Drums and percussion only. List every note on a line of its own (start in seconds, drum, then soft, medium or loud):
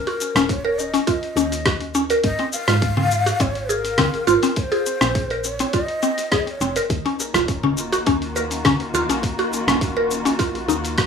0.07 open hi-hat soft
0.20 shaker medium
0.36 cross-stick medium
0.36 open hi-hat soft
0.36 shaker soft
0.49 kick loud
0.49 open hi-hat medium
0.49 shaker soft
0.79 shaker medium
0.94 open hi-hat soft
0.94 shaker soft
1.07 kick loud
1.07 open hi-hat medium
1.07 shaker soft
1.23 open hi-hat soft
1.37 shaker medium
1.52 open hi-hat soft
1.52 shaker soft
1.66 kick loud
1.66 cross-stick medium
1.66 open hi-hat medium
1.66 shaker soft
1.81 open hi-hat soft
1.94 shaker medium
2.10 open hi-hat soft
2.10 shaker soft
2.24 kick loud
2.24 open hi-hat medium
2.24 shaker soft
2.39 open hi-hat soft
2.52 shaker medium
2.68 cross-stick medium
2.68 open hi-hat soft
2.68 shaker soft
2.82 kick loud
2.82 open hi-hat medium
2.82 shaker soft
2.97 low conga medium
3.11 shaker medium
3.27 open hi-hat soft
3.27 shaker soft
3.40 kick loud
3.40 open hi-hat medium
3.40 shaker soft
3.55 open hi-hat soft
3.69 shaker medium
3.85 open hi-hat soft
3.85 shaker soft
3.98 kick loud
3.98 cross-stick medium
3.98 open hi-hat medium
3.98 low conga medium
3.98 shaker soft
4.14 open hi-hat soft
4.27 shaker medium
4.43 open hi-hat soft
4.43 shaker soft
4.56 kick loud
4.56 open hi-hat medium
4.56 shaker soft
4.72 open hi-hat soft
4.86 shaker medium
5.01 cross-stick medium
5.01 open hi-hat soft
5.01 shaker soft
5.15 kick loud
5.15 open hi-hat medium
5.15 shaker soft
5.30 open hi-hat soft
5.44 shaker medium
5.59 open hi-hat soft
5.59 shaker soft
5.73 kick loud
5.73 open hi-hat medium
5.73 shaker soft
5.88 open hi-hat soft
6.02 shaker medium
6.18 open hi-hat soft
6.18 shaker soft
6.32 kick loud
6.32 cross-stick medium
6.32 open hi-hat medium
6.32 shaker soft
6.47 open hi-hat soft
6.61 shaker medium
6.76 open hi-hat soft
6.76 shaker soft
6.90 kick loud
6.90 open hi-hat medium
6.90 djembe tone medium
6.90 shaker soft
7.06 open hi-hat soft
7.20 djembe slap medium
7.20 shaker medium
7.34 cross-stick medium
7.34 open hi-hat soft
7.34 djembe slap medium
7.34 djembe bass medium
7.34 shaker soft
7.48 kick loud
7.48 open hi-hat medium
7.48 djembe tone medium
7.48 shaker soft
7.63 djembe slap medium
7.63 low conga medium
7.77 shaker medium
7.93 open hi-hat soft
7.93 djembe tone medium
7.93 shaker soft
8.06 kick loud
8.06 open hi-hat medium
8.06 djembe tone medium
8.06 shaker soft
8.22 open hi-hat soft
8.35 djembe slap soft
8.35 shaker medium
8.51 open hi-hat soft
8.51 shaker soft
8.65 kick loud
8.65 cross-stick medium
8.65 open hi-hat medium
8.65 low conga medium
8.65 shaker soft
8.80 open hi-hat soft
8.94 shaker medium
9.09 open hi-hat soft
9.09 djembe bass medium
9.09 shaker soft
9.22 kick loud
9.22 open hi-hat medium
9.22 djembe tone medium
9.22 shaker soft
9.38 open hi-hat soft
9.38 djembe tone soft
9.52 djembe slap medium
9.52 shaker medium
9.67 cross-stick medium
9.67 open hi-hat soft
9.67 djembe slap medium
9.67 djembe bass medium
9.67 shaker soft
9.81 kick loud
9.81 open hi-hat medium
9.81 djembe tone medium
9.81 shaker soft
9.96 djembe slap medium
10.11 shaker medium
10.25 open hi-hat soft
10.25 djembe tone medium
10.25 shaker soft
10.39 kick loud
10.39 open hi-hat medium
10.39 shaker soft
10.55 open hi-hat soft
10.55 djembe bass medium
10.69 shaker medium
10.85 open hi-hat soft
10.85 shaker soft
10.98 kick loud
10.98 cross-stick medium
10.98 open hi-hat medium
10.98 shaker soft